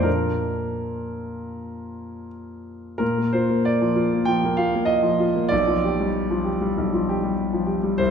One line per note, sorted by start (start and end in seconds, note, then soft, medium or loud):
0.00 2.94 A#2 soft
0.00 2.95 F3 soft
0.00 2.96 A#3 soft
0.00 2.96 D4 soft
0.00 2.28 A#4 medium
2.98 4.24 A#2 soft
2.98 3.33 A#4 medium
3.18 3.44 A#3 soft
3.33 3.60 F4 soft
3.33 3.65 C5 medium
3.49 4.00 A#3 soft
3.65 4.28 D5 medium
3.81 4.07 F3 soft
3.96 4.21 F4 soft
4.13 4.38 A#3 soft
4.25 4.53 F3 soft
4.25 4.58 G5 medium
4.45 4.69 A#3 soft
4.57 4.83 F4 soft
4.57 4.89 F5 medium
4.75 5.24 A#3 soft
4.85 5.50 D#5 medium
5.03 5.29 F3 soft
5.20 5.45 F4 soft
5.36 5.52 A#3 soft
5.49 6.72 B1 medium
5.49 7.67 D5 medium
5.67 5.92 F3 soft
5.84 6.08 G4 soft
6.00 6.49 G3 soft
6.30 6.55 F3 soft
6.44 6.70 G4 soft
6.61 6.86 G3 soft
6.78 7.97 B1 soft
6.94 7.17 F3 soft
7.09 7.33 G4 medium
7.23 7.72 G3 soft
7.53 7.78 F3 soft
7.67 7.93 G4 soft
7.83 7.99 G3 soft
7.98 8.11 C2 medium
7.98 8.11 C5 medium